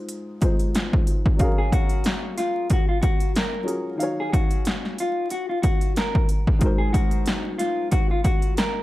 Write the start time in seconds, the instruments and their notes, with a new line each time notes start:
Already playing: upright piano G#2 G#3 D#4 F4 C5
0.09 closed hi-hat
0.41 upright piano G#2 G#3 D#4 F4 C5, kick, closed hi-hat
0.59 closed hi-hat
0.75 snare, closed hi-hat
0.93 kick
1.07 closed hi-hat
1.26 kick
1.37 upright piano F#3 C#4 F5, kick, closed hi-hat
1.42 upright piano G#4 A#4
1.58 clean electric guitar G#4
1.72 clean electric guitar F#4, kick, closed hi-hat
1.89 closed hi-hat
2.04 snare, closed hi-hat
2.38 clean electric guitar F4, snare, closed hi-hat
2.70 clean electric guitar F#4, kick, closed hi-hat
2.89 clean electric guitar F4
3.02 clean electric guitar F#4, kick, closed hi-hat
3.20 closed hi-hat
3.36 clean electric guitar A#4, snare, closed hi-hat
3.63 upright piano F#3 C#4 F4 G#4 A#4
3.68 closed hi-hat
3.96 upright piano D#3 D#4 F5
4.00 upright piano F#3 C#5, closed hi-hat
4.20 clean electric guitar G#4
4.32 clean electric guitar F#4, kick, closed hi-hat
4.51 closed hi-hat
4.65 snare, closed hi-hat
4.85 snare
4.98 clean electric guitar F4, closed hi-hat
5.30 clean electric guitar F#4, closed hi-hat
5.49 clean electric guitar F4
5.62 clean electric guitar F#4, kick, closed hi-hat
5.81 closed hi-hat
5.96 clean electric guitar A#4, snare, closed hi-hat
6.15 kick
6.29 closed hi-hat
6.47 kick
6.59 upright piano G#2 F#3 G#3, kick, closed hi-hat
6.64 upright piano A#4 C5
6.78 clean electric guitar G#4
6.93 clean electric guitar F#4, kick, closed hi-hat
7.11 closed hi-hat
7.26 snare, closed hi-hat
7.58 clean electric guitar F4, snare, closed hi-hat
7.91 clean electric guitar F#4, kick, closed hi-hat
8.11 clean electric guitar F4
8.24 clean electric guitar F#4, kick, closed hi-hat
8.42 closed hi-hat
8.57 clean electric guitar A#4, snare, closed hi-hat